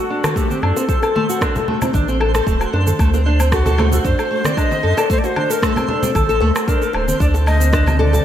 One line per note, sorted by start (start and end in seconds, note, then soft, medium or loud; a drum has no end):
0.00 0.38 F#4 medium
0.00 8.25 C5 medium
0.10 0.23 D4 loud
0.24 0.36 A4 medium
0.24 cross-stick medium
0.24 high conga medium
0.24 cabasa medium
0.24 low woodblock medium
0.36 0.50 A3 medium
0.36 0.64 G4 medium
0.36 kick loud
0.36 cabasa medium
0.50 0.57 C4 medium
0.50 high conga medium
0.50 cabasa soft
0.62 0.73 F#2 medium
0.62 0.75 D4 medium
0.62 1.68 A4 medium
0.62 low woodblock medium
0.77 0.84 C4 medium
0.77 high bongo medium
0.77 cabasa medium
0.89 1.01 A4 medium
0.89 kick loud
0.89 cabasa medium
1.02 1.14 A4 medium
1.02 high bongo medium
1.02 cabasa soft
1.02 low woodblock medium
1.15 1.23 A3 medium
1.15 high conga medium
1.29 1.41 F#4 medium
1.29 cabasa medium
1.41 1.55 D4 medium
1.41 kick loud
1.41 cross-stick medium
1.41 cabasa medium
1.41 low woodblock medium
1.55 1.67 A4 medium
1.55 low conga loud
1.55 cabasa soft
1.68 1.81 A3 medium
1.68 low conga medium
1.82 1.89 C4 medium
1.82 low conga medium
1.82 cabasa medium
1.82 low woodblock medium
1.93 2.41 A1 medium
1.93 2.07 D4 loud
1.93 kick loud
1.93 high conga medium
1.93 cabasa medium
2.08 2.15 C4 medium
2.08 cabasa soft
2.20 2.33 A4 medium
2.20 high bongo soft
2.20 low woodblock medium
2.34 2.46 A4 medium
2.34 cross-stick medium
2.34 cabasa medium
2.47 2.66 D1 medium
2.47 2.55 A3 loud
2.47 kick loud
2.47 cabasa medium
2.61 2.72 F#4 medium
2.61 cabasa soft
2.61 low woodblock medium
2.73 2.93 F#2 medium
2.73 2.86 D4 medium
2.73 high bongo soft
2.87 2.99 A4 medium
2.87 high conga medium
2.87 cabasa medium
2.99 3.99 D2 loud
2.99 3.13 A3 medium
2.99 kick loud
2.99 cabasa medium
2.99 low woodblock medium
3.14 3.21 C4 medium
3.14 high bongo medium
3.14 cabasa soft
3.26 3.38 D4 medium
3.40 3.47 C4 medium
3.40 cabasa medium
3.40 low woodblock medium
3.52 3.90 F#4 medium
3.52 3.65 A4 loud
3.52 kick loud
3.52 cross-stick medium
3.52 cabasa medium
3.66 3.77 A4 loud
3.66 low conga medium
3.66 cabasa soft
3.78 3.86 A3 loud
3.78 high conga soft
3.78 low conga loud
3.78 low woodblock medium
3.92 4.04 F#4 medium
3.92 3.98 A4 medium
3.92 low conga medium
3.92 cabasa medium
4.05 4.15 F#2 medium
4.05 4.18 D4 medium
4.05 4.47 C5 medium
4.05 kick loud
4.05 cabasa medium
4.19 4.30 A4 medium
4.19 cabasa soft
4.19 low woodblock medium
4.31 4.44 A3 medium
4.45 4.52 C4 medium
4.45 4.59 D5 medium
4.45 cross-stick medium
4.45 high conga medium
4.45 cabasa medium
4.57 4.70 D4 medium
4.57 5.00 D#5 loud
4.57 kick loud
4.57 cabasa medium
4.57 low woodblock medium
4.71 4.78 C4 medium
4.71 high conga medium
4.71 cabasa soft
4.83 4.94 F#2 medium
4.83 4.96 A4 medium
4.97 5.09 A4 loud
4.97 5.10 D5 medium
4.97 high bongo medium
4.97 cabasa medium
4.97 low woodblock medium
5.10 5.18 A3 loud
5.10 5.20 C5 loud
5.10 kick loud
5.10 cabasa medium
5.18 5.27 D5 medium
5.24 5.36 F#4 medium
5.24 5.52 C5 loud
5.24 high bongo medium
5.24 cabasa soft
5.36 5.49 D4 medium
5.36 high conga soft
5.36 low woodblock medium
5.50 5.62 A4 medium
5.50 5.65 A#4 medium
5.50 cabasa medium
5.62 5.76 A3 medium
5.62 6.69 A4 loud
5.62 kick loud
5.62 cross-stick medium
5.62 cabasa medium
5.76 5.83 C4 medium
5.76 low conga medium
5.76 cabasa soft
5.76 low woodblock medium
5.88 6.01 D4 medium
5.88 low conga medium
6.03 6.10 C4 medium
6.03 low conga medium
6.03 cabasa medium
6.15 6.41 A1 medium
6.15 6.28 A4 medium
6.15 kick loud
6.15 high conga medium
6.15 cabasa medium
6.15 low woodblock medium
6.29 6.40 A4 medium
6.29 cabasa soft
6.41 6.52 D2 medium
6.41 6.49 A3 medium
6.41 high bongo soft
6.55 6.67 F#4 medium
6.55 cross-stick medium
6.55 cabasa medium
6.55 low woodblock medium
6.68 6.81 D4 medium
6.68 6.96 A#4 medium
6.68 kick loud
6.68 cabasa medium
6.81 6.93 A4 medium
6.81 cabasa soft
6.93 7.14 D1 medium
6.93 7.07 A3 medium
6.93 7.20 C5 medium
6.93 high bongo soft
6.93 low woodblock medium
7.08 7.15 C4 medium
7.08 high conga medium
7.08 cabasa medium
7.20 8.20 D2 loud
7.20 8.25 D3 medium
7.20 7.33 D4 medium
7.20 7.27 D5 loud
7.20 kick loud
7.20 cabasa medium
7.34 7.46 A4 medium
7.34 high bongo medium
7.34 cabasa soft
7.46 7.60 A3 medium
7.46 8.25 C4 medium
7.46 8.02 D#5 loud
7.46 low woodblock medium
7.60 7.67 C4 medium
7.60 cabasa medium
7.73 7.85 D4 loud
7.73 kick loud
7.73 cross-stick medium
7.73 cabasa medium
7.86 7.94 C4 medium
7.86 low conga medium
7.86 cabasa soft
7.86 low woodblock medium
7.99 8.12 A4 medium
7.99 8.25 D5 medium
7.99 high conga soft
7.99 low conga medium
8.13 8.24 A4 loud
8.13 low conga medium
8.13 cabasa medium